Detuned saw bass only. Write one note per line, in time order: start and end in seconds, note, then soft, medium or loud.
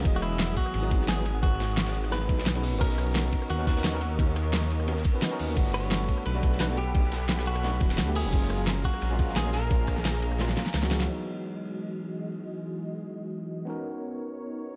0.05 0.56 E1 loud
0.74 1.07 G#1 medium
1.08 2.28 G#1 medium
2.29 2.46 B1 medium
2.46 2.74 B1 medium
2.73 2.80 F#1 medium
2.81 3.31 B1 loud
3.50 3.83 D#2 medium
3.85 5.04 D#2 medium
5.40 5.55 D#2 medium
5.57 6.07 G1 loud
6.26 6.59 B1 medium
6.60 7.80 B1 medium
7.81 8.00 D1 medium
7.98 8.26 D2 medium
8.25 8.32 D1 medium
8.33 8.83 F#1 medium
9.02 9.35 A#1 medium
9.36 10.56 A#1 medium
10.74 11.07 C#2 loud